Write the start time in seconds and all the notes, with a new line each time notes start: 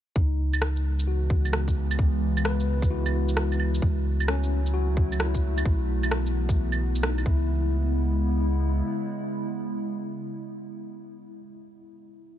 0.15 C#2 C#3 E3 G#3 B3 D#4, kick
0.53 claves, shaker
0.62 cross-stick
0.76 shaker
0.99 shaker
1.08 F#4
1.30 kick
1.45 claves, shaker
1.53 cross-stick
1.68 kick, shaker
1.91 claves, shaker
1.99 kick
2.37 claves, shaker
2.45 B4, cross-stick
2.60 shaker
2.82 kick, shaker
2.90 E4 F#4
3.06 claves, shaker
3.29 shaker
3.37 cross-stick
3.52 claves, shaker
3.60 claves
3.75 shaker
3.82 C#2 F#3 A3 E4, kick
4.20 claves, shaker
4.28 C#4, cross-stick
4.43 shaker
4.66 shaker
4.74 F#4
4.97 kick
5.12 claves, shaker
5.20 E4, cross-stick
5.35 kick, shaker
5.58 claves, shaker
5.65 B1 E3 B3, kick
6.03 claves, shaker
6.11 cross-stick
6.26 shaker
6.49 kick, shaker
6.72 claves, shaker
6.95 shaker
7.03 D#4, cross-stick
7.18 claves, shaker
7.25 C#2 C#3 G#3 B3 E4, kick